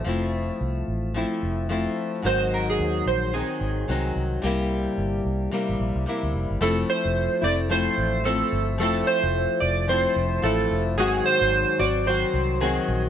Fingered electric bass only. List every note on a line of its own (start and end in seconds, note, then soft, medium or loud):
0.06 0.50 F1 medium
0.61 0.82 C2 medium
0.88 1.23 A1 medium
1.43 1.86 F1 medium
2.25 2.81 G#1 loud
2.79 3.01 D#2 medium
3.06 3.41 A#1 medium
3.61 3.83 G#1 loud
3.88 4.10 C2 medium
4.16 4.38 C2 medium
4.43 4.87 C2 medium
4.98 5.19 G1 medium
5.25 5.47 C2 medium
5.69 5.78 A1 medium
5.80 5.93 A#1 medium
5.95 6.04 C2 medium
6.23 6.32 D2 medium
6.34 6.47 F1 medium
6.50 6.59 G1 medium
6.61 6.83 F1 loud
7.05 7.27 F1 medium
7.43 7.87 F1 loud
7.98 8.41 A1 medium
8.53 8.80 G1 medium
8.80 9.02 F1 loud
9.23 9.45 F1 loud
9.62 10.05 F1 medium
10.16 10.38 F1 medium
10.44 10.65 A1 loud
10.71 10.98 F1 medium
10.98 11.20 G#1 loud
11.41 11.63 G#1 loud
11.80 12.23 G#1 loud
12.34 12.77 C2 medium
12.88 13.09 A#1 medium